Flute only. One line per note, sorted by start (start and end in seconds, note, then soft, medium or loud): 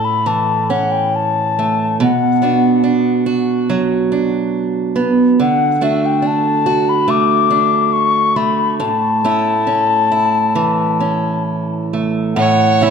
0.05 0.29 B5 medium
0.27 0.72 A5 medium
0.70 0.93 F#5 medium
0.92 1.17 G5 medium
1.15 2.01 A5 medium
2.03 2.83 F#5 medium
5.41 5.85 F#5 medium
5.83 6.07 E5 medium
6.06 6.28 G5 medium
6.27 6.91 A5 medium
6.89 7.12 B5 medium
7.10 7.94 D6 medium
7.93 8.38 C#6 medium
8.36 8.78 B5 medium
8.79 11.42 A5 medium
12.36 12.84 F#5 medium
12.83 12.90 E5 medium